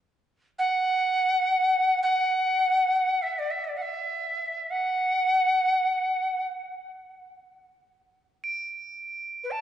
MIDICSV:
0, 0, Header, 1, 3, 480
1, 0, Start_track
1, 0, Tempo, 500000
1, 9226, End_track
2, 0, Start_track
2, 0, Title_t, "Crotales"
2, 0, Program_c, 0, 9
2, 8100, Note_on_c, 0, 98, 43
2, 9226, Note_off_c, 0, 98, 0
2, 9226, End_track
3, 0, Start_track
3, 0, Title_t, "Native American-style wooden flute"
3, 0, Program_c, 1, 77
3, 562, Note_on_c, 1, 78, 92
3, 1919, Note_off_c, 1, 78, 0
3, 1943, Note_on_c, 1, 78, 86
3, 3092, Note_on_c, 1, 76, 69
3, 3106, Note_off_c, 1, 78, 0
3, 3251, Note_on_c, 1, 74, 61
3, 3265, Note_off_c, 1, 76, 0
3, 3364, Note_on_c, 1, 76, 67
3, 3378, Note_off_c, 1, 74, 0
3, 3494, Note_on_c, 1, 74, 61
3, 3509, Note_off_c, 1, 76, 0
3, 3618, Note_on_c, 1, 78, 65
3, 3633, Note_off_c, 1, 74, 0
3, 3664, Note_on_c, 1, 76, 70
3, 3674, Note_off_c, 1, 78, 0
3, 4513, Note_on_c, 1, 78, 78
3, 4528, Note_off_c, 1, 76, 0
3, 6198, Note_off_c, 1, 78, 0
3, 9059, Note_on_c, 1, 71, 54
3, 9128, Note_on_c, 1, 81, 83
3, 9142, Note_off_c, 1, 71, 0
3, 9226, Note_off_c, 1, 81, 0
3, 9226, End_track
0, 0, End_of_file